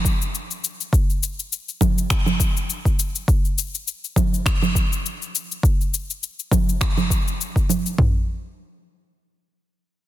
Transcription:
0.05 kick medium
0.05 shaker medium
0.22 shaker soft
0.35 shaker soft
0.51 shaker soft
0.64 shaker medium
0.81 shaker soft
0.93 kick loud
0.93 shaker soft
1.10 shaker soft
1.23 shaker medium
1.39 shaker soft
1.52 shaker soft
1.69 shaker soft
1.81 kick medium
1.81 low conga medium
1.81 shaker medium
1.98 shaker soft
2.10 finger snap medium
2.10 kick medium
2.10 shaker soft
2.26 low conga medium
2.26 shaker soft
2.40 kick medium
2.40 shaker medium
2.57 shaker soft
2.70 shaker soft
2.85 kick medium
2.85 shaker soft
2.99 shaker medium
3.15 shaker soft
3.28 kick loud
3.28 shaker soft
3.45 shaker soft
3.58 shaker medium
3.75 shaker soft
3.88 shaker soft
4.04 shaker soft
4.16 kick medium
4.16 low conga medium
4.16 shaker medium
4.34 shaker soft
4.46 finger snap medium
4.46 kick medium
4.46 shaker soft
4.62 low conga medium
4.62 shaker soft
4.75 kick medium
4.75 shaker medium
4.93 shaker soft
5.06 shaker soft
5.22 shaker soft
5.35 shaker medium
5.52 shaker soft
5.63 kick loud
5.63 shaker soft
5.81 shaker soft
5.94 shaker medium
6.10 shaker soft
6.23 shaker soft
6.39 shaker soft
6.51 kick medium
6.51 low conga medium
6.51 shaker medium
6.69 shaker soft
6.81 finger snap medium
6.81 kick medium
6.81 shaker soft
6.97 low conga medium
6.97 shaker soft
7.10 kick medium
7.10 shaker medium
7.28 shaker soft
7.41 shaker soft
7.56 kick medium
7.56 shaker soft
7.69 low conga medium
7.69 shaker medium
7.86 shaker soft
7.98 kick medium
7.98 floor tom medium

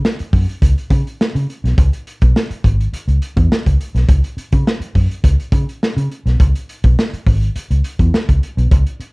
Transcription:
0.05 snare loud
0.19 muted fingered electric bass stroke soft
0.19 closed hi-hat soft
0.33 0.45 F#2 loud
0.33 kick medium
0.33 open hi-hat medium
0.49 closed hi-hat medium
0.62 0.74 C#2 loud
0.62 kick loud
0.62 closed hi-hat medium
0.78 closed hi-hat medium
0.90 1.02 C#3 loud
0.90 kick loud
0.90 closed hi-hat medium
1.07 closed hi-hat soft
1.21 snare loud
1.35 1.45 C#3 medium
1.35 closed hi-hat medium
1.50 closed hi-hat medium
1.64 1.74 B1 medium
1.64 snare soft
1.64 closed hi-hat soft
1.78 1.89 C#2 loud
1.78 kick loud
1.78 closed hi-hat medium
1.93 closed hi-hat medium
2.07 closed hi-hat medium
2.22 2.32 B1 medium
2.22 kick loud
2.22 closed hi-hat medium
2.36 snare loud
2.50 muted fingered electric bass stroke soft
2.50 closed hi-hat medium
2.64 2.86 G#1 medium
2.64 kick loud
2.64 closed hi-hat medium
2.80 closed hi-hat soft
2.93 muted fingered electric bass stroke soft
2.93 closed hi-hat loud
3.08 3.18 C#2 medium
3.08 closed hi-hat medium
3.22 closed hi-hat medium
3.36 3.47 E2 medium
3.36 kick loud
3.36 closed hi-hat soft
3.50 muted fingered electric bass stroke soft
3.50 snare loud
3.66 3.76 C#2 medium
3.66 kick medium
3.66 closed hi-hat medium
3.81 closed hi-hat medium
3.95 4.05 B1 medium
3.95 snare soft
3.95 closed hi-hat medium
4.08 4.20 C#2 loud
4.08 kick loud
4.08 closed hi-hat medium
4.24 closed hi-hat medium
4.37 muted fingered electric bass stroke soft
4.37 closed hi-hat medium
4.52 4.63 C#3 loud
4.52 kick loud
4.52 closed hi-hat medium
4.67 snare loud
4.80 muted fingered electric bass stroke soft
4.80 closed hi-hat soft
4.95 5.07 F#2 medium
4.95 kick medium
4.95 open hi-hat medium
5.11 closed hi-hat medium
5.24 5.36 C#2 loud
5.24 kick loud
5.24 closed hi-hat medium
5.40 closed hi-hat medium
5.52 5.64 C#3 loud
5.52 kick loud
5.52 closed hi-hat medium
5.69 closed hi-hat soft
5.83 snare medium
5.97 6.07 C#3 medium
5.97 closed hi-hat medium
6.12 closed hi-hat medium
6.26 6.36 B1 medium
6.26 snare soft
6.26 closed hi-hat medium
6.40 6.52 C#2 loud
6.40 kick loud
6.40 closed hi-hat medium
6.55 closed hi-hat medium
6.69 closed hi-hat medium
6.84 6.94 B1 loud
6.84 kick loud
6.84 closed hi-hat medium
6.99 snare loud
7.13 muted fingered electric bass stroke soft
7.13 closed hi-hat medium
7.26 7.49 G#1 medium
7.26 kick loud
7.26 open hi-hat medium
7.43 closed hi-hat medium
7.56 muted fingered electric bass stroke soft
7.56 closed hi-hat medium
7.71 7.81 C#2 medium
7.71 closed hi-hat medium
7.84 closed hi-hat medium
7.99 8.10 E2 medium
7.99 kick medium
7.99 closed hi-hat soft
8.13 muted fingered electric bass stroke soft
8.13 snare loud
8.29 8.39 C#2 medium
8.29 kick medium
8.29 closed hi-hat medium
8.43 closed hi-hat medium
8.57 8.68 B1 medium
8.57 closed hi-hat medium
8.71 8.83 C#2 loud
8.71 kick loud
8.71 closed hi-hat loud
8.87 closed hi-hat medium
9.00 muted fingered electric bass stroke soft
9.00 closed hi-hat medium

